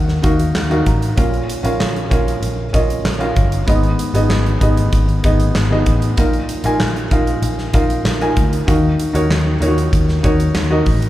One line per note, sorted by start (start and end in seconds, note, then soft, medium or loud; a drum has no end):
0.00 0.18 D#2 medium
0.00 1.19 D#3 medium
0.00 0.22 D#4 medium
0.00 0.23 F#4 medium
0.00 0.24 A#4 medium
0.00 0.24 F5 medium
0.00 0.18 F#5 medium
0.08 snare soft
0.22 0.50 D#2 medium
0.22 0.63 D#4 medium
0.22 0.63 F#4 medium
0.22 0.64 A#4 medium
0.22 0.54 F5 medium
0.22 kick medium
0.22 closed hi-hat medium
0.39 closed hi-hat soft
0.55 0.81 D#2 medium
0.55 0.70 F5 medium
0.55 snare medium
0.55 clap medium
0.70 1.10 D#4 medium
0.70 1.10 F#4 medium
0.70 1.11 A#4 medium
0.70 1.11 F5 medium
0.70 closed hi-hat soft
0.86 1.12 A1 medium
0.86 1.16 A#5 medium
0.86 kick medium
0.86 closed hi-hat medium
1.02 closed hi-hat soft
1.17 1.43 A#1 medium
1.17 2.08 A#2 medium
1.17 1.57 C#4 medium
1.17 1.57 F4 medium
1.17 1.58 A#4 medium
1.17 1.58 F5 medium
1.17 kick loud
1.17 closed hi-hat medium
1.34 closed hi-hat soft
1.50 closed hi-hat medium
1.63 1.77 A#1 medium
1.63 2.04 C#4 medium
1.63 2.04 F4 medium
1.63 2.04 A#4 medium
1.63 2.05 F5 medium
1.63 closed hi-hat medium
1.80 2.06 A#1 medium
1.80 snare loud
1.80 clap medium
1.96 closed hi-hat soft
2.10 2.37 A#1 medium
2.10 2.64 C#4 medium
2.10 2.64 F4 medium
2.10 2.65 A#4 medium
2.10 2.65 F5 medium
2.10 kick medium
2.10 closed hi-hat medium
2.28 closed hi-hat soft
2.42 2.68 A#1 medium
2.42 closed hi-hat medium
2.73 2.99 A#1 medium
2.73 3.13 C#4 medium
2.73 3.13 F4 medium
2.73 3.14 A#4 medium
2.73 3.14 D#5 medium
2.73 kick medium
2.73 closed hi-hat medium
2.90 closed hi-hat medium
3.05 3.31 A#1 medium
3.05 snare loud
3.05 clap medium
3.19 3.60 C#4 medium
3.19 3.60 F4 medium
3.19 3.60 A#4 medium
3.19 3.61 F5 medium
3.19 closed hi-hat soft
3.36 3.62 G1 medium
3.36 kick medium
3.36 closed hi-hat medium
3.52 closed hi-hat medium
3.66 3.93 G#1 medium
3.66 4.57 G#2 medium
3.66 4.07 B3 medium
3.66 4.07 D#4 medium
3.66 4.08 G#4 medium
3.66 4.08 D#5 medium
3.66 kick medium
3.66 closed hi-hat medium
3.83 closed hi-hat soft
3.99 closed hi-hat medium
4.14 4.27 G#1 medium
4.14 4.54 B3 medium
4.14 4.54 D#4 medium
4.14 4.55 G#4 medium
4.14 4.55 D#5 medium
4.14 closed hi-hat medium
4.29 4.55 G#1 medium
4.29 snare loud
4.29 clap medium
4.46 closed hi-hat soft
4.61 4.87 G#1 medium
4.61 5.14 B3 medium
4.61 5.15 D#4 medium
4.61 5.15 G#4 medium
4.61 5.15 D#5 medium
4.61 kick medium
4.61 closed hi-hat medium
4.77 closed hi-hat medium
4.93 5.18 G#1 medium
4.93 kick medium
4.93 closed hi-hat medium
5.09 closed hi-hat soft
5.24 5.49 G#1 medium
5.24 5.64 B3 medium
5.24 5.64 D#4 medium
5.24 5.64 G#4 medium
5.24 5.64 D#5 medium
5.24 kick medium
5.24 closed hi-hat medium
5.40 closed hi-hat soft
5.55 5.81 G#1 medium
5.55 snare loud
5.55 clap medium
5.70 6.10 B3 medium
5.70 6.11 D#4 medium
5.70 6.11 G#4 medium
5.70 6.11 D#5 medium
5.86 6.12 A1 medium
5.86 kick medium
5.86 closed hi-hat medium
6.02 closed hi-hat soft
6.17 6.43 A#1 medium
6.17 7.08 A#2 medium
6.17 6.57 D#4 medium
6.17 6.57 F4 medium
6.17 6.58 A#4 medium
6.17 6.58 F5 medium
6.17 kick loud
6.17 closed hi-hat medium
6.33 closed hi-hat soft
6.49 closed hi-hat medium
6.64 6.77 A#1 medium
6.64 7.04 D#4 medium
6.64 7.04 F4 medium
6.64 7.05 A#4 medium
6.64 7.05 G#5 medium
6.64 closed hi-hat medium
6.80 7.06 A#1 medium
6.80 snare loud
6.80 clap medium
6.96 closed hi-hat soft
7.11 7.37 A#1 medium
7.11 7.64 D#4 medium
7.11 7.65 F4 medium
7.11 7.65 A#4 medium
7.11 7.65 F5 medium
7.11 kick medium
7.11 closed hi-hat medium
7.27 closed hi-hat soft
7.42 7.68 A#1 medium
7.42 closed hi-hat medium
7.58 snare soft
7.73 8.00 A#1 medium
7.73 8.13 D#4 medium
7.73 8.14 F4 medium
7.73 8.14 A#4 medium
7.73 8.14 F5 medium
7.73 kick medium
7.73 closed hi-hat medium
7.90 closed hi-hat medium
8.05 8.31 A#1 medium
8.05 snare loud
8.05 clap medium
8.20 8.60 D#4 medium
8.20 8.61 F4 medium
8.20 8.61 A#4 medium
8.20 8.61 G#5 medium
8.20 closed hi-hat soft
8.37 8.62 D2 medium
8.37 kick medium
8.37 closed hi-hat medium
8.53 closed hi-hat medium
8.67 8.93 D#2 loud
8.67 9.57 D#3 medium
8.67 9.07 D#4 medium
8.67 9.07 F#4 medium
8.67 9.08 A#4 medium
8.67 9.08 F5 medium
8.67 kick loud
8.67 closed hi-hat medium
9.00 closed hi-hat medium
9.13 9.27 D#2 medium
9.13 9.54 D#4 medium
9.13 9.54 F#4 medium
9.13 9.54 A#4 medium
9.13 9.55 C#5 medium
9.13 closed hi-hat medium
9.30 9.56 D#2 medium
9.30 snare medium
9.30 clap medium
9.60 9.87 D#2 medium
9.60 10.14 D#4 medium
9.60 9.68 F4 medium
9.60 10.15 A#4 medium
9.60 10.15 C#5 medium
9.60 closed hi-hat medium
9.68 10.18 F#4 medium
9.78 closed hi-hat soft
9.93 10.19 D#2 medium
9.93 kick medium
9.93 closed hi-hat medium
10.09 snare soft
10.23 10.49 D#2 medium
10.23 10.63 D#4 medium
10.23 10.64 F#4 medium
10.23 10.64 A#4 medium
10.23 10.64 C#5 medium
10.23 kick medium
10.23 closed hi-hat medium
10.40 closed hi-hat medium
10.55 10.81 D#2 loud
10.55 snare loud
10.55 clap medium
10.70 11.09 D#4 medium
10.70 11.09 F#4 medium
10.70 11.09 A#4 medium
10.70 11.09 D#5 medium
10.86 11.09 A1 medium
10.86 kick medium
10.86 open hi-hat medium
11.02 closed hi-hat soft